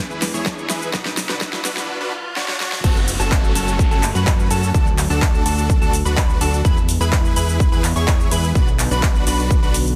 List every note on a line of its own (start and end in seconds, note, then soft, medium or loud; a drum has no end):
0.00 0.92 E3 medium
0.00 0.92 G#3 medium
0.00 1.86 B3 medium
0.00 riser medium
0.10 0.32 E2 loud
0.10 0.22 E4 medium
0.10 0.22 G#4 medium
0.10 0.22 B4 loud
0.10 shaker soft
0.22 snare medium
0.22 open hi-hat loud
0.22 shaker medium
0.34 0.67 E2 loud
0.34 0.67 E4 medium
0.34 0.67 G#4 medium
0.34 0.67 C#5 medium
0.34 shaker soft
0.46 kick loud
0.46 snare medium
0.46 shaker soft
0.58 shaker soft
0.70 0.91 E2 loud
0.70 0.89 E4 medium
0.70 0.89 G#4 medium
0.70 0.89 B4 loud
0.70 snare medium
0.70 open hi-hat loud
0.70 shaker medium
0.82 shaker soft
0.93 1.88 D3 medium
0.93 1.88 F#3 medium
0.93 1.06 D4 medium
0.93 1.06 F#4 medium
0.93 1.06 B4 loud
0.93 kick loud
0.93 snare medium
0.93 shaker soft
1.05 snare medium
1.05 shaker soft
1.17 snare loud
1.17 open hi-hat loud
1.17 shaker medium
1.29 1.63 B1 loud
1.29 1.62 D4 loud
1.29 1.62 F#4 medium
1.29 1.62 B4 loud
1.29 snare medium
1.29 shaker soft
1.41 kick loud
1.41 snare loud
1.41 shaker soft
1.53 snare medium
1.53 shaker soft
1.65 1.89 B1 loud
1.65 1.98 D4 medium
1.65 1.98 F#4 medium
1.65 1.98 B4 loud
1.65 snare loud
1.65 open hi-hat loud
1.65 shaker medium
1.77 snare medium
1.77 shaker soft
2.01 2.13 D4 medium
2.01 2.13 F#4 medium
2.01 2.13 B4 loud
2.36 2.45 D4 medium
2.36 2.45 F#4 medium
2.36 2.45 C#5 medium
2.36 snare medium
2.48 2.57 D4 medium
2.48 2.57 F#4 medium
2.48 2.57 C#5 loud
2.48 snare medium
2.60 2.80 D4 medium
2.60 2.80 F#4 medium
2.60 2.80 C#5 loud
2.60 snare medium
2.72 snare medium
2.84 3.17 F#1 medium
2.84 4.73 C#3 medium
2.84 6.61 F#3 medium
2.84 6.61 A3 medium
2.84 2.96 C#4 loud
2.84 2.96 F#4 medium
2.84 2.96 A4 loud
2.84 2.96 A5 loud
2.84 kick loud
2.84 crash loud
2.84 downlifter medium
2.84 shaker soft
2.97 shaker soft
3.08 open hi-hat loud
3.08 shaker medium
3.20 3.53 F#1 loud
3.20 3.53 C#4 loud
3.20 3.53 F#4 medium
3.20 3.53 A4 loud
3.20 3.53 A5 loud
3.20 shaker soft
3.32 kick loud
3.32 clap loud
3.32 shaker soft
3.44 shaker soft
3.55 3.89 F#1 loud
3.55 3.88 C#4 medium
3.55 3.88 F#4 medium
3.55 3.88 A4 loud
3.55 3.88 A5 medium
3.55 open hi-hat loud
3.55 shaker medium
3.68 shaker soft
3.79 kick loud
3.79 shaker soft
3.91 4.13 F#1 loud
3.91 4.03 C#4 medium
3.91 4.03 F#4 medium
3.91 4.03 A4 loud
3.91 4.03 A5 loud
3.91 shaker soft
4.03 clap medium
4.03 open hi-hat loud
4.03 shaker medium
4.15 4.48 F#2 loud
4.15 4.48 C#4 medium
4.15 4.48 F#4 medium
4.15 4.48 B4 medium
4.15 4.48 B5 loud
4.15 shaker soft
4.27 kick loud
4.27 clap loud
4.27 shaker soft
4.39 shaker soft
4.51 4.72 F#2 loud
4.51 4.70 C#4 medium
4.51 4.70 F#4 medium
4.51 4.70 A4 loud
4.51 4.70 A5 loud
4.51 open hi-hat loud
4.51 shaker medium
4.63 shaker soft
4.74 5.08 D2 medium
4.74 6.63 D3 medium
4.74 4.87 D4 loud
4.74 4.87 F#4 medium
4.74 4.87 A4 loud
4.74 4.87 A5 loud
4.74 kick loud
4.74 shaker soft
4.87 shaker soft
4.98 clap medium
4.98 open hi-hat loud
4.98 shaker medium
5.10 5.43 D2 loud
5.10 5.43 D4 loud
5.10 5.43 F#4 medium
5.10 5.43 A4 loud
5.10 5.43 A5 loud
5.10 shaker soft
5.22 kick loud
5.22 clap loud
5.22 shaker soft
5.35 shaker soft
5.46 5.79 D2 loud
5.46 5.79 D4 medium
5.46 5.79 F#4 medium
5.46 5.79 A4 loud
5.46 5.79 A5 loud
5.46 open hi-hat loud
5.46 shaker medium
5.58 shaker soft
5.70 kick loud
5.70 shaker soft
5.82 6.03 D2 loud
5.82 5.94 D4 medium
5.82 5.94 F#4 medium
5.82 5.94 A4 loud
5.82 5.94 A5 loud
5.82 shaker soft
5.93 open hi-hat loud
5.93 shaker medium
6.05 6.39 D2 loud
6.05 6.38 D4 medium
6.05 6.38 F#4 medium
6.05 6.38 B4 medium
6.05 6.38 B5 medium
6.05 shaker soft
6.17 kick loud
6.17 clap loud
6.17 shaker soft
6.30 shaker soft
6.41 6.63 D2 loud
6.41 6.60 D4 medium
6.41 6.60 F#4 medium
6.41 6.60 A4 loud
6.41 6.60 A5 loud
6.41 open hi-hat loud
6.41 shaker medium
6.54 shaker soft
6.65 8.53 E3 medium
6.65 8.54 G#3 medium
6.65 9.96 B3 medium
6.65 6.77 E4 loud
6.65 6.77 G#4 medium
6.65 6.77 B4 loud
6.65 6.77 B5 loud
6.65 kick loud
6.65 shaker soft
6.77 shaker soft
6.89 open hi-hat loud
6.89 shaker medium
7.01 7.34 E2 loud
7.01 7.33 E4 loud
7.01 7.33 G#4 medium
7.01 7.33 B4 loud
7.01 7.33 B5 loud
7.01 shaker soft
7.12 kick loud
7.12 clap loud
7.12 shaker soft
7.25 shaker soft
7.36 7.70 E2 loud
7.36 7.69 E4 medium
7.36 7.69 G#4 medium
7.36 7.69 B4 loud
7.36 7.69 B5 loud
7.36 open hi-hat loud
7.36 shaker medium
7.49 shaker soft
7.60 kick loud
7.60 shaker soft
7.72 7.93 E2 loud
7.72 7.84 E4 medium
7.72 7.84 G#4 medium
7.72 7.84 B4 loud
7.72 7.84 B5 medium
7.72 shaker soft
7.84 clap medium
7.84 open hi-hat loud
7.84 shaker medium
7.96 8.29 E2 medium
7.96 8.29 E4 medium
7.96 8.29 G#4 medium
7.96 8.29 C#5 medium
7.96 8.29 C#6 loud
7.96 shaker soft
8.08 kick loud
8.08 clap loud
8.08 shaker soft
8.20 shaker soft
8.31 8.53 E2 loud
8.31 8.51 E4 loud
8.31 8.51 G#4 medium
8.31 8.51 B4 loud
8.31 8.51 B5 loud
8.31 open hi-hat loud
8.31 shaker medium
8.44 shaker soft
8.55 8.89 B1 medium
8.55 9.96 D3 medium
8.55 9.96 F#3 medium
8.55 8.68 D4 loud
8.55 8.68 F#4 medium
8.55 8.68 B4 loud
8.55 8.68 B5 loud
8.55 kick loud
8.55 shaker soft
8.68 shaker soft
8.79 clap medium
8.79 open hi-hat loud
8.79 shaker medium
8.91 9.24 B1 loud
8.91 9.24 D4 loud
8.91 9.24 F#4 medium
8.91 9.24 B4 loud
8.91 9.24 B5 loud
8.91 shaker soft
9.03 kick loud
9.03 clap loud
9.03 shaker soft
9.16 shaker soft
9.27 9.60 B1 loud
9.27 9.60 D4 medium
9.27 9.60 F#4 medium
9.27 9.60 B4 loud
9.27 9.60 B5 loud
9.27 open hi-hat loud
9.27 shaker medium
9.39 shaker soft
9.51 kick loud
9.51 shaker soft
9.62 9.96 B1 loud
9.62 9.75 D4 medium
9.62 9.75 F#4 medium
9.62 9.75 B4 loud
9.62 9.75 B5 loud
9.62 shaker soft
9.74 open hi-hat loud
9.74 shaker medium
9.87 shaker soft